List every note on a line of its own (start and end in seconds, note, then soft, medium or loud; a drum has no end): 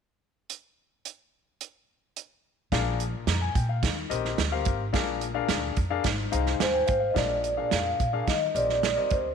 0.50 closed hi-hat medium
1.05 closed hi-hat soft
1.61 closed hi-hat medium
2.16 closed hi-hat medium
2.72 3.13 A#1 loud
2.72 3.51 A#2 medium
2.72 3.02 D4 medium
2.72 3.02 G#4 medium
2.72 3.02 A#4 medium
2.72 3.00 F5 medium
2.72 kick medium
2.72 snare medium
2.72 closed hi-hat medium
3.00 closed hi-hat medium
3.27 3.48 F2 medium
3.27 3.41 A#5 medium
3.27 snare medium
3.27 closed hi-hat medium
3.41 3.55 G#5 medium
3.55 3.84 A#2 loud
3.55 3.68 G5 medium
3.55 kick medium
3.55 closed hi-hat medium
3.69 3.96 F5 medium
3.82 4.03 D#2 medium
3.82 4.62 D#3 medium
3.82 kick medium
3.82 snare loud
3.82 closed hi-hat medium
4.09 4.31 A#1 medium
4.09 4.40 C4 medium
4.09 4.40 G4 medium
4.09 4.40 A#4 medium
4.09 4.40 D#5 medium
4.09 closed hi-hat medium
4.25 snare soft
4.38 4.68 D2 medium
4.38 snare loud
4.38 closed hi-hat medium
4.52 4.82 C4 medium
4.52 4.82 G4 medium
4.52 4.82 A#4 medium
4.52 4.82 F5 medium
4.65 4.94 G#1 medium
4.65 kick loud
4.65 closed hi-hat medium
4.93 5.35 A#1 loud
4.93 5.73 A#2 medium
4.93 5.23 D4 medium
4.93 5.23 G#4 medium
4.93 5.23 A#4 medium
4.93 5.23 F5 medium
4.93 kick loud
4.93 snare medium
4.93 closed hi-hat medium
5.21 closed hi-hat medium
5.34 5.74 D4 medium
5.34 5.75 G#4 medium
5.34 5.75 A#4 medium
5.34 5.75 F5 medium
5.49 5.70 D2 medium
5.49 snare medium
5.49 closed hi-hat medium
5.76 5.98 F2 medium
5.76 kick medium
5.76 closed hi-hat medium
5.90 6.05 D4 medium
5.90 6.05 G#4 medium
5.90 6.05 A#4 medium
5.90 6.05 F5 medium
6.04 6.25 G#1 medium
6.04 6.84 G#2 medium
6.04 kick medium
6.04 snare medium
6.04 closed hi-hat medium
6.32 6.53 C2 medium
6.32 6.62 D#4 medium
6.32 6.62 G#4 medium
6.32 6.62 C5 medium
6.32 6.58 F5 medium
6.32 6.58 A#5 medium
6.32 closed hi-hat medium
6.46 snare soft
6.60 6.81 D#2 medium
6.60 7.11 C5 loud
6.60 6.74 F5 medium
6.60 6.72 G#5 medium
6.60 snare loud
6.60 closed hi-hat medium
6.74 6.85 G5 medium
6.74 6.87 G#5 medium
6.87 7.09 G#1 medium
6.87 6.99 F5 medium
6.87 7.01 G5 medium
6.87 kick loud
6.87 closed hi-hat medium
7.00 7.13 F5 medium
7.10 7.95 A#2 medium
7.10 7.45 D4 medium
7.10 7.45 G#4 medium
7.10 7.45 A#4 medium
7.10 7.17 D#5 medium
7.15 7.57 A#1 medium
7.15 7.74 D5 medium
7.15 7.45 F5 medium
7.15 kick medium
7.15 snare loud
7.15 closed hi-hat medium
7.44 closed hi-hat medium
7.57 7.97 D4 medium
7.57 7.97 G#4 medium
7.57 7.97 A#4 medium
7.57 7.97 F5 medium
7.71 7.92 F2 medium
7.71 8.24 F5 loud
7.71 snare medium
7.71 closed hi-hat medium
8.00 8.20 A#2 medium
8.00 kick medium
8.00 closed hi-hat medium
8.13 8.27 D4 medium
8.13 8.27 G#4 medium
8.13 8.27 A#4 medium
8.13 8.27 F5 medium
8.27 9.07 D#3 medium
8.27 8.48 D#3 medium
8.27 8.40 D#5 medium
8.27 kick medium
8.27 snare loud
8.27 closed hi-hat medium
8.55 8.96 A#1 medium
8.55 8.85 C4 medium
8.55 8.85 G4 medium
8.55 8.85 A#4 medium
8.55 9.13 D5 medium
8.55 8.85 D#5 medium
8.55 closed hi-hat medium
8.69 snare soft
8.83 snare loud
8.83 closed hi-hat medium
8.96 9.26 C4 medium
8.96 9.26 G4 medium
8.96 9.26 A#4 medium
8.96 9.26 D#5 medium
9.10 9.35 D2 medium
9.10 9.23 C5 medium
9.10 kick medium
9.10 closed hi-hat medium